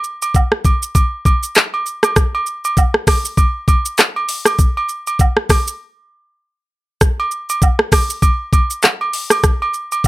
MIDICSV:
0, 0, Header, 1, 2, 480
1, 0, Start_track
1, 0, Tempo, 606061
1, 1713, Time_signature, 4, 2, 24, 8
1, 7981, End_track
2, 0, Start_track
2, 0, Title_t, "Drums"
2, 32, Note_on_c, 9, 82, 46
2, 111, Note_off_c, 9, 82, 0
2, 175, Note_on_c, 9, 82, 70
2, 178, Note_on_c, 9, 67, 75
2, 254, Note_off_c, 9, 82, 0
2, 257, Note_off_c, 9, 67, 0
2, 273, Note_on_c, 9, 36, 96
2, 274, Note_on_c, 9, 82, 66
2, 285, Note_on_c, 9, 77, 83
2, 353, Note_off_c, 9, 36, 0
2, 353, Note_off_c, 9, 82, 0
2, 364, Note_off_c, 9, 77, 0
2, 410, Note_on_c, 9, 37, 91
2, 489, Note_off_c, 9, 37, 0
2, 512, Note_on_c, 9, 36, 89
2, 513, Note_on_c, 9, 82, 56
2, 518, Note_on_c, 9, 67, 74
2, 591, Note_off_c, 9, 36, 0
2, 592, Note_off_c, 9, 82, 0
2, 598, Note_off_c, 9, 67, 0
2, 654, Note_on_c, 9, 82, 78
2, 733, Note_off_c, 9, 82, 0
2, 752, Note_on_c, 9, 36, 96
2, 752, Note_on_c, 9, 67, 78
2, 753, Note_on_c, 9, 82, 71
2, 831, Note_off_c, 9, 36, 0
2, 831, Note_off_c, 9, 67, 0
2, 832, Note_off_c, 9, 82, 0
2, 993, Note_on_c, 9, 36, 95
2, 995, Note_on_c, 9, 82, 54
2, 996, Note_on_c, 9, 67, 83
2, 1072, Note_off_c, 9, 36, 0
2, 1075, Note_off_c, 9, 67, 0
2, 1075, Note_off_c, 9, 82, 0
2, 1133, Note_on_c, 9, 82, 73
2, 1212, Note_off_c, 9, 82, 0
2, 1229, Note_on_c, 9, 82, 76
2, 1240, Note_on_c, 9, 37, 94
2, 1240, Note_on_c, 9, 39, 98
2, 1308, Note_off_c, 9, 82, 0
2, 1319, Note_off_c, 9, 37, 0
2, 1319, Note_off_c, 9, 39, 0
2, 1376, Note_on_c, 9, 67, 74
2, 1455, Note_off_c, 9, 67, 0
2, 1474, Note_on_c, 9, 82, 50
2, 1553, Note_off_c, 9, 82, 0
2, 1607, Note_on_c, 9, 37, 106
2, 1611, Note_on_c, 9, 82, 79
2, 1619, Note_on_c, 9, 67, 80
2, 1686, Note_off_c, 9, 37, 0
2, 1690, Note_off_c, 9, 82, 0
2, 1698, Note_off_c, 9, 67, 0
2, 1713, Note_on_c, 9, 36, 110
2, 1713, Note_on_c, 9, 37, 102
2, 1713, Note_on_c, 9, 82, 73
2, 1792, Note_off_c, 9, 36, 0
2, 1792, Note_off_c, 9, 37, 0
2, 1792, Note_off_c, 9, 82, 0
2, 1859, Note_on_c, 9, 67, 82
2, 1938, Note_off_c, 9, 67, 0
2, 1952, Note_on_c, 9, 82, 47
2, 2031, Note_off_c, 9, 82, 0
2, 2095, Note_on_c, 9, 82, 71
2, 2098, Note_on_c, 9, 67, 76
2, 2174, Note_off_c, 9, 82, 0
2, 2177, Note_off_c, 9, 67, 0
2, 2194, Note_on_c, 9, 36, 96
2, 2195, Note_on_c, 9, 82, 68
2, 2204, Note_on_c, 9, 77, 86
2, 2273, Note_off_c, 9, 36, 0
2, 2274, Note_off_c, 9, 82, 0
2, 2284, Note_off_c, 9, 77, 0
2, 2330, Note_on_c, 9, 37, 92
2, 2409, Note_off_c, 9, 37, 0
2, 2432, Note_on_c, 9, 36, 87
2, 2433, Note_on_c, 9, 46, 81
2, 2433, Note_on_c, 9, 82, 57
2, 2437, Note_on_c, 9, 37, 99
2, 2438, Note_on_c, 9, 67, 76
2, 2511, Note_off_c, 9, 36, 0
2, 2512, Note_off_c, 9, 46, 0
2, 2512, Note_off_c, 9, 82, 0
2, 2516, Note_off_c, 9, 37, 0
2, 2517, Note_off_c, 9, 67, 0
2, 2574, Note_on_c, 9, 82, 77
2, 2654, Note_off_c, 9, 82, 0
2, 2672, Note_on_c, 9, 36, 96
2, 2673, Note_on_c, 9, 67, 78
2, 2673, Note_on_c, 9, 82, 69
2, 2751, Note_off_c, 9, 36, 0
2, 2752, Note_off_c, 9, 67, 0
2, 2752, Note_off_c, 9, 82, 0
2, 2913, Note_on_c, 9, 36, 97
2, 2915, Note_on_c, 9, 82, 59
2, 2917, Note_on_c, 9, 67, 88
2, 2992, Note_off_c, 9, 36, 0
2, 2995, Note_off_c, 9, 82, 0
2, 2996, Note_off_c, 9, 67, 0
2, 3053, Note_on_c, 9, 82, 77
2, 3132, Note_off_c, 9, 82, 0
2, 3150, Note_on_c, 9, 82, 78
2, 3160, Note_on_c, 9, 37, 95
2, 3160, Note_on_c, 9, 39, 101
2, 3229, Note_off_c, 9, 82, 0
2, 3240, Note_off_c, 9, 37, 0
2, 3240, Note_off_c, 9, 39, 0
2, 3297, Note_on_c, 9, 67, 74
2, 3376, Note_off_c, 9, 67, 0
2, 3395, Note_on_c, 9, 46, 74
2, 3395, Note_on_c, 9, 82, 55
2, 3474, Note_off_c, 9, 46, 0
2, 3474, Note_off_c, 9, 82, 0
2, 3528, Note_on_c, 9, 37, 109
2, 3531, Note_on_c, 9, 82, 80
2, 3540, Note_on_c, 9, 67, 77
2, 3607, Note_off_c, 9, 37, 0
2, 3611, Note_off_c, 9, 82, 0
2, 3619, Note_off_c, 9, 67, 0
2, 3633, Note_on_c, 9, 36, 110
2, 3633, Note_on_c, 9, 82, 75
2, 3712, Note_off_c, 9, 36, 0
2, 3712, Note_off_c, 9, 82, 0
2, 3780, Note_on_c, 9, 67, 81
2, 3859, Note_off_c, 9, 67, 0
2, 3872, Note_on_c, 9, 82, 47
2, 3951, Note_off_c, 9, 82, 0
2, 4015, Note_on_c, 9, 82, 71
2, 4018, Note_on_c, 9, 67, 77
2, 4094, Note_off_c, 9, 82, 0
2, 4098, Note_off_c, 9, 67, 0
2, 4113, Note_on_c, 9, 36, 97
2, 4114, Note_on_c, 9, 82, 69
2, 4125, Note_on_c, 9, 77, 80
2, 4193, Note_off_c, 9, 36, 0
2, 4194, Note_off_c, 9, 82, 0
2, 4204, Note_off_c, 9, 77, 0
2, 4250, Note_on_c, 9, 37, 90
2, 4329, Note_off_c, 9, 37, 0
2, 4352, Note_on_c, 9, 36, 90
2, 4353, Note_on_c, 9, 46, 83
2, 4353, Note_on_c, 9, 82, 60
2, 4357, Note_on_c, 9, 37, 106
2, 4358, Note_on_c, 9, 67, 72
2, 4431, Note_off_c, 9, 36, 0
2, 4433, Note_off_c, 9, 46, 0
2, 4433, Note_off_c, 9, 82, 0
2, 4436, Note_off_c, 9, 37, 0
2, 4437, Note_off_c, 9, 67, 0
2, 4495, Note_on_c, 9, 82, 77
2, 4574, Note_off_c, 9, 82, 0
2, 5553, Note_on_c, 9, 36, 116
2, 5553, Note_on_c, 9, 37, 103
2, 5553, Note_on_c, 9, 82, 80
2, 5632, Note_off_c, 9, 36, 0
2, 5632, Note_off_c, 9, 37, 0
2, 5632, Note_off_c, 9, 82, 0
2, 5700, Note_on_c, 9, 67, 83
2, 5779, Note_off_c, 9, 67, 0
2, 5792, Note_on_c, 9, 82, 45
2, 5871, Note_off_c, 9, 82, 0
2, 5935, Note_on_c, 9, 82, 76
2, 5938, Note_on_c, 9, 67, 75
2, 6014, Note_off_c, 9, 82, 0
2, 6017, Note_off_c, 9, 67, 0
2, 6034, Note_on_c, 9, 36, 104
2, 6035, Note_on_c, 9, 82, 71
2, 6045, Note_on_c, 9, 77, 81
2, 6113, Note_off_c, 9, 36, 0
2, 6114, Note_off_c, 9, 82, 0
2, 6124, Note_off_c, 9, 77, 0
2, 6170, Note_on_c, 9, 37, 99
2, 6249, Note_off_c, 9, 37, 0
2, 6272, Note_on_c, 9, 36, 92
2, 6274, Note_on_c, 9, 46, 81
2, 6274, Note_on_c, 9, 82, 61
2, 6277, Note_on_c, 9, 37, 103
2, 6278, Note_on_c, 9, 67, 75
2, 6351, Note_off_c, 9, 36, 0
2, 6353, Note_off_c, 9, 46, 0
2, 6353, Note_off_c, 9, 82, 0
2, 6356, Note_off_c, 9, 37, 0
2, 6357, Note_off_c, 9, 67, 0
2, 6415, Note_on_c, 9, 82, 78
2, 6494, Note_off_c, 9, 82, 0
2, 6512, Note_on_c, 9, 36, 97
2, 6513, Note_on_c, 9, 67, 79
2, 6514, Note_on_c, 9, 82, 70
2, 6591, Note_off_c, 9, 36, 0
2, 6593, Note_off_c, 9, 67, 0
2, 6593, Note_off_c, 9, 82, 0
2, 6753, Note_on_c, 9, 36, 97
2, 6756, Note_on_c, 9, 82, 58
2, 6757, Note_on_c, 9, 67, 88
2, 6832, Note_off_c, 9, 36, 0
2, 6835, Note_off_c, 9, 82, 0
2, 6837, Note_off_c, 9, 67, 0
2, 6894, Note_on_c, 9, 82, 76
2, 6973, Note_off_c, 9, 82, 0
2, 6990, Note_on_c, 9, 82, 82
2, 6997, Note_on_c, 9, 77, 82
2, 7000, Note_on_c, 9, 37, 98
2, 7000, Note_on_c, 9, 39, 97
2, 7069, Note_off_c, 9, 82, 0
2, 7076, Note_off_c, 9, 77, 0
2, 7080, Note_off_c, 9, 37, 0
2, 7080, Note_off_c, 9, 39, 0
2, 7136, Note_on_c, 9, 67, 75
2, 7216, Note_off_c, 9, 67, 0
2, 7234, Note_on_c, 9, 46, 72
2, 7234, Note_on_c, 9, 82, 54
2, 7314, Note_off_c, 9, 46, 0
2, 7314, Note_off_c, 9, 82, 0
2, 7368, Note_on_c, 9, 37, 110
2, 7372, Note_on_c, 9, 82, 81
2, 7380, Note_on_c, 9, 67, 80
2, 7447, Note_off_c, 9, 37, 0
2, 7451, Note_off_c, 9, 82, 0
2, 7459, Note_off_c, 9, 67, 0
2, 7473, Note_on_c, 9, 36, 116
2, 7473, Note_on_c, 9, 82, 77
2, 7474, Note_on_c, 9, 37, 103
2, 7552, Note_off_c, 9, 36, 0
2, 7553, Note_off_c, 9, 37, 0
2, 7553, Note_off_c, 9, 82, 0
2, 7620, Note_on_c, 9, 67, 85
2, 7699, Note_off_c, 9, 67, 0
2, 7712, Note_on_c, 9, 82, 45
2, 7792, Note_off_c, 9, 82, 0
2, 7855, Note_on_c, 9, 82, 72
2, 7858, Note_on_c, 9, 67, 76
2, 7934, Note_off_c, 9, 82, 0
2, 7937, Note_off_c, 9, 67, 0
2, 7954, Note_on_c, 9, 36, 102
2, 7955, Note_on_c, 9, 82, 72
2, 7981, Note_off_c, 9, 36, 0
2, 7981, Note_off_c, 9, 82, 0
2, 7981, End_track
0, 0, End_of_file